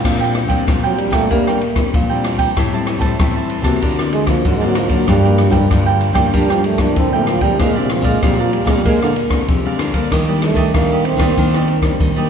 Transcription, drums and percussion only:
0.05 kick, cross-stick, crash
0.35 cross-stick, ride
0.49 kick, ride
0.68 kick, cross-stick, ride
0.98 ride
1.12 kick, cross-stick, ride
1.31 kick, ride
1.47 cross-stick
1.61 ride
1.76 kick, cross-stick, ride
1.94 kick, ride
2.24 cross-stick, ride
2.39 kick, ride
2.57 kick, cross-stick, ride
2.87 cross-stick, ride
3.01 kick, ride
3.19 kick, cross-stick, ride
3.50 ride
3.64 kick, cross-stick, ride
3.82 kick, ride
3.99 cross-stick
4.13 ride
4.27 kick, cross-stick, ride
4.45 kick, ride
4.75 cross-stick, ride
4.89 kick, ride
5.08 kick, cross-stick, ride
5.38 cross-stick, ride
5.52 kick, ride
5.71 kick, cross-stick, ride
6.01 ride
6.15 kick, cross-stick, ride
6.34 kick, ride
6.50 cross-stick
6.64 ride
6.78 kick, cross-stick, ride
6.96 kick, ride
7.27 cross-stick, ride
7.41 kick, ride
7.59 kick, cross-stick, ride
7.89 cross-stick, ride
8.04 kick, ride
8.22 kick, cross-stick, ride
8.53 ride
8.67 kick, cross-stick, ride
8.85 kick, ride
9.02 cross-stick
9.16 ride
9.30 kick, cross-stick, ride
9.48 kick, ride
9.79 cross-stick, ride
9.93 kick, ride
10.12 kick, cross-stick, ride
10.42 cross-stick, ride
10.56 kick, ride
10.74 kick, cross-stick, ride
11.05 ride
11.19 kick, cross-stick, ride
11.37 kick, ride
11.54 cross-stick
11.68 ride
11.82 kick, cross-stick, ride
12.00 kick, ride

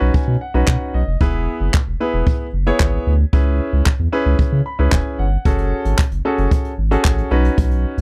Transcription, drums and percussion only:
0.14 kick
0.68 kick, clap
1.21 kick
1.74 kick, clap
2.27 kick
2.80 kick, clap
3.33 kick
3.86 kick, clap
4.39 kick
4.92 kick, clap
5.45 kick, closed hi-hat
5.58 closed hi-hat
5.85 closed hi-hat
5.98 kick, clap, closed hi-hat
6.12 closed hi-hat
6.38 closed hi-hat
6.51 kick, closed hi-hat
6.65 closed hi-hat
6.91 closed hi-hat
7.05 kick, clap, closed hi-hat
7.18 closed hi-hat
7.45 closed hi-hat
7.58 kick, closed hi-hat
7.71 closed hi-hat
7.98 closed hi-hat

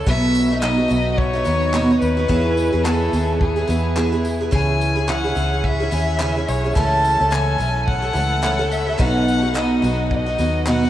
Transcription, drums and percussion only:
0.07 kick
0.35 tambourine
0.63 clap
0.91 tambourine
1.18 kick
1.45 tambourine
1.74 clap
2.02 tambourine
2.29 kick
2.57 tambourine
2.86 clap
3.13 tambourine
3.41 kick
3.69 tambourine
3.97 clap
4.25 tambourine
4.53 kick
4.81 tambourine
5.09 clap
5.36 tambourine
5.64 kick
5.92 tambourine
6.20 clap
6.48 tambourine
6.76 kick
7.04 tambourine
7.33 clap
7.60 tambourine
7.88 kick
8.16 tambourine
8.44 clap
8.71 tambourine
9.00 kick
9.28 tambourine
9.56 clap
9.84 tambourine
10.11 kick
10.39 tambourine
10.66 clap

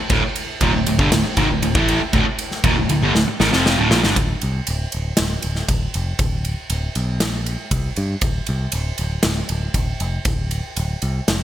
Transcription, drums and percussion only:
0.10 kick, ride
0.36 ride
0.61 kick, ride
0.87 ride
0.99 kick
1.12 snare, ride
1.37 kick, ride
1.62 ride
1.75 kick
1.88 ride
2.13 kick, ride
2.39 ride
2.51 snare
2.64 kick, ride
2.89 ride
3.15 snare
3.40 snare
3.53 snare
3.66 snare
3.91 snare
4.04 snare
4.16 kick, ride
4.42 ride
4.67 ride
4.92 ride
5.17 snare, ride
5.42 ride
5.55 snare
5.68 kick, ride
5.94 ride
6.19 kick, ride
6.45 ride
6.70 ride
6.95 ride
7.20 snare, ride
7.46 ride
7.71 kick, ride
7.96 ride
8.21 kick, ride
8.47 ride
8.72 ride
8.98 ride
9.23 snare, ride
9.49 ride
9.74 kick, ride
10.00 ride
10.25 kick, ride
10.51 ride
10.77 ride
11.02 ride
11.28 snare, ride

